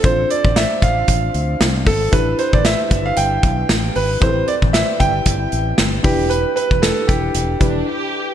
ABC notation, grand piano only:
X:1
M:4/4
L:1/16
Q:"Swing 16ths" 1/4=115
K:Ephr
V:1 name="Grand piano"
c2 d2 e2 f8 A2 | B2 c d e3 f g6 B2 | c2 d2 e2 g8 G2 | B2 B2 A2 G6 z4 |]